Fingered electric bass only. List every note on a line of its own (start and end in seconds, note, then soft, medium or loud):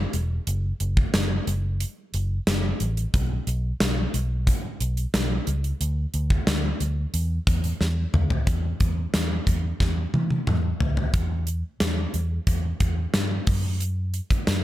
0.14 0.38 E1 medium
0.47 0.71 F#1 loud
0.80 1.04 F#1 medium
1.14 1.38 F#1 loud
1.47 1.83 F#1 medium
2.14 2.38 F#1 loud
2.47 2.71 F#1 medium
2.81 3.05 A1 loud
3.14 3.38 B1 loud
3.47 3.71 B1 loud
3.81 4.05 B1 medium
4.14 4.50 B1 loud
4.81 5.04 B1 loud
5.14 5.38 B1 loud
5.47 5.71 C#2 loud
5.81 6.05 D2 loud
6.14 6.38 D2 medium
6.47 6.71 D2 loud
6.80 7.04 D2 medium
7.14 7.38 E2 medium
7.47 7.71 E2 medium
7.81 8.05 E2 medium
8.14 8.38 D2 medium
8.47 8.71 E2 medium
8.81 9.05 E2 medium
9.14 9.38 E2 medium
9.47 9.71 E2 medium
9.80 10.04 E2 medium
10.14 10.38 E3 medium
10.47 10.71 E2 medium
10.81 11.05 D2 medium
11.14 11.62 E2 medium
11.81 12.05 E2 medium
12.14 12.38 E2 loud
12.47 12.71 E2 medium
12.80 13.04 E2 medium
13.14 13.38 G2 medium
13.47 14.19 F#2 loud
14.47 14.64 F#2 medium